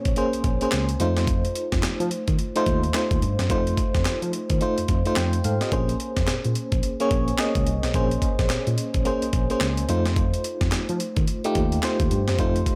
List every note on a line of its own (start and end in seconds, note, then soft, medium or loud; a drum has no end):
0.00 0.17 A#3 medium
0.00 0.17 C#4 medium
0.00 0.18 G#4 medium
0.00 0.18 C5 loud
0.00 1.02 C#5 loud
0.05 0.14 A#1 medium
0.05 kick medium
0.05 closed hi-hat medium
0.16 0.42 A#3 medium
0.16 0.43 C#4 medium
0.16 0.43 G#4 medium
0.16 0.43 C5 loud
0.16 closed hi-hat medium
0.33 0.38 A#1 soft
0.33 closed hi-hat soft
0.44 0.57 A#1 medium
0.44 kick medium
0.44 closed hi-hat medium
0.61 0.86 A#3 medium
0.61 0.86 C#4 medium
0.61 0.86 G#4 medium
0.61 0.87 C5 medium
0.61 closed hi-hat soft
0.72 0.94 C#2 loud
0.72 snare loud
0.72 clap medium
0.72 closed hi-hat medium
0.89 closed hi-hat medium
1.00 1.43 F2 loud
1.00 1.90 A3 medium
1.00 1.90 D#4 medium
1.00 1.90 F4 medium
1.00 1.91 C5 medium
1.00 closed hi-hat medium
1.17 snare medium
1.17 closed hi-hat soft
1.27 kick loud
1.27 closed hi-hat medium
1.45 closed hi-hat medium
1.55 closed hi-hat medium
1.72 1.81 F2 medium
1.72 kick loud
1.72 snare medium
1.72 closed hi-hat soft
1.83 1.90 F3 soft
1.83 snare loud
1.83 clap medium
1.83 closed hi-hat medium
2.00 2.09 F3 loud
2.00 closed hi-hat soft
2.11 closed hi-hat medium
2.28 2.36 D#3 medium
2.28 kick medium
2.28 closed hi-hat medium
2.39 closed hi-hat medium
2.56 2.80 A3 medium
2.56 2.80 D#4 loud
2.56 2.81 F4 medium
2.56 2.81 C5 loud
2.56 closed hi-hat soft
2.66 2.88 D#2 medium
2.66 kick medium
2.66 closed hi-hat medium
2.83 closed hi-hat soft
2.94 3.29 A3 medium
2.94 3.29 D#4 medium
2.94 3.30 F4 medium
2.94 3.30 C5 loud
2.94 snare loud
2.94 clap medium
2.94 closed hi-hat medium
3.11 3.20 D#2 medium
3.11 kick medium
3.11 closed hi-hat medium
3.22 3.35 G2 medium
3.22 closed hi-hat medium
3.39 3.47 F#2 medium
3.39 snare medium
3.39 closed hi-hat soft
3.50 3.71 F2 loud
3.50 4.20 A3 loud
3.50 4.20 D#4 medium
3.50 4.20 F4 medium
3.50 4.20 C5 loud
3.50 kick loud
3.50 closed hi-hat medium
3.67 closed hi-hat medium
3.77 kick medium
3.77 closed hi-hat medium
3.95 4.03 F2 medium
3.95 kick medium
3.95 snare medium
3.95 closed hi-hat soft
4.05 4.12 F3 soft
4.05 snare loud
4.05 clap medium
4.05 closed hi-hat medium
4.22 4.31 F3 medium
4.22 closed hi-hat soft
4.33 closed hi-hat medium
4.50 4.59 D#3 medium
4.50 kick medium
4.50 closed hi-hat medium
4.61 4.87 A3 medium
4.61 4.87 D#4 medium
4.61 4.87 F4 medium
4.61 4.87 C5 loud
4.61 closed hi-hat medium
4.78 4.82 F2 soft
4.78 closed hi-hat medium
4.88 5.02 F2 medium
4.88 kick medium
4.88 closed hi-hat medium
5.05 5.30 A3 medium
5.05 5.30 D#4 medium
5.05 5.31 F4 medium
5.05 5.17 C5 medium
5.05 closed hi-hat medium
5.16 5.38 F2 medium
5.16 5.43 G5 medium
5.16 snare loud
5.16 clap medium
5.16 closed hi-hat medium
5.33 closed hi-hat medium
5.44 5.58 G#2 medium
5.44 5.61 A4 medium
5.44 5.61 F5 medium
5.44 closed hi-hat medium
5.61 5.88 G4 medium
5.61 5.88 D#5 medium
5.61 snare medium
5.61 closed hi-hat medium
5.72 5.94 A#1 loud
5.72 6.42 A#3 medium
5.72 6.42 C#4 medium
5.72 6.42 G#4 medium
5.72 6.42 C5 medium
5.72 kick loud
5.72 closed hi-hat medium
5.89 closed hi-hat medium
6.00 closed hi-hat medium
6.17 6.25 F2 medium
6.17 kick medium
6.17 snare medium
6.17 closed hi-hat medium
6.27 6.35 A#2 soft
6.27 snare loud
6.27 clap medium
6.27 closed hi-hat medium
6.44 6.53 A#2 medium
6.44 closed hi-hat soft
6.55 closed hi-hat medium
6.72 6.81 A#1 medium
6.72 kick medium
6.72 closed hi-hat soft
6.83 closed hi-hat medium
7.00 7.25 A#3 loud
7.00 7.25 C#4 medium
7.00 7.25 G#4 medium
7.00 7.25 C#5 loud
7.00 closed hi-hat soft
7.11 7.33 A#1 medium
7.11 kick medium
7.11 closed hi-hat medium
7.28 closed hi-hat soft
7.38 7.74 A#3 medium
7.38 7.74 C#4 medium
7.38 7.74 G#4 medium
7.38 7.74 D#5 medium
7.38 snare loud
7.38 clap medium
7.38 closed hi-hat medium
7.55 7.64 C#2 medium
7.55 kick loud
7.55 closed hi-hat medium
7.67 7.80 C2 medium
7.67 closed hi-hat medium
7.83 7.92 B1 medium
7.83 snare medium
7.83 closed hi-hat soft
7.94 8.16 A#1 loud
7.94 8.64 A#3 medium
7.94 8.64 C#4 medium
7.94 8.64 G#4 medium
7.94 8.65 C5 loud
7.94 kick loud
7.94 closed hi-hat medium
8.11 closed hi-hat medium
8.22 kick medium
8.22 closed hi-hat medium
8.39 8.48 A#1 medium
8.39 kick medium
8.39 snare medium
8.39 closed hi-hat soft
8.50 8.57 A#2 soft
8.50 snare loud
8.50 clap medium
8.50 closed hi-hat medium
8.67 8.75 A#2 loud
8.67 closed hi-hat soft
8.78 closed hi-hat medium
8.94 9.03 A#1 medium
8.94 kick medium
8.94 closed hi-hat medium
9.05 9.31 A#3 medium
9.05 9.31 C#4 medium
9.05 9.32 G#4 medium
9.05 9.32 C5 loud
9.05 closed hi-hat medium
9.22 9.27 A#1 soft
9.22 closed hi-hat soft
9.33 9.46 A#1 medium
9.33 kick medium
9.33 closed hi-hat medium
9.50 9.75 A#3 medium
9.50 9.75 C#4 medium
9.50 9.75 G#4 medium
9.50 9.75 C5 medium
9.50 closed hi-hat soft
9.61 9.82 C#2 medium
9.61 snare loud
9.61 clap medium
9.61 closed hi-hat medium
9.77 closed hi-hat medium
9.89 10.32 F2 medium
9.89 10.79 A3 medium
9.89 10.79 D#4 medium
9.89 10.79 F4 medium
9.89 10.79 C5 medium
9.89 closed hi-hat medium
10.06 snare medium
10.06 closed hi-hat medium
10.16 kick loud
10.16 closed hi-hat medium
10.34 closed hi-hat medium
10.44 closed hi-hat medium
10.61 10.70 F2 medium
10.61 kick loud
10.61 snare medium
10.61 closed hi-hat soft
10.72 10.79 F3 soft
10.72 snare loud
10.72 clap medium
10.72 closed hi-hat medium
10.89 10.98 F3 loud
10.89 closed hi-hat soft
11.00 closed hi-hat medium
11.16 11.25 D#3 medium
11.16 kick medium
11.16 closed hi-hat medium
11.27 closed hi-hat medium
11.44 11.69 A3 loud
11.44 11.69 D#4 medium
11.44 11.70 F4 medium
11.44 11.70 G4 loud
11.44 closed hi-hat medium
11.55 11.77 D#2 medium
11.55 kick medium
11.55 closed hi-hat medium
11.72 closed hi-hat medium
11.83 12.18 A3 medium
11.83 12.18 D#4 medium
11.83 12.19 F4 medium
11.83 12.19 C5 loud
11.83 snare loud
11.83 clap medium
11.83 closed hi-hat medium
12.00 12.08 D#2 medium
12.00 kick medium
12.00 closed hi-hat medium
12.11 12.24 G2 loud
12.11 closed hi-hat medium
12.28 12.37 F#2 medium
12.28 snare medium
12.28 closed hi-hat soft
12.39 12.60 F2 loud
12.39 12.75 A3 medium
12.39 12.75 D#4 medium
12.39 12.75 F4 medium
12.39 12.75 C5 loud
12.39 kick loud
12.39 closed hi-hat medium
12.56 closed hi-hat medium
12.66 kick medium
12.66 closed hi-hat medium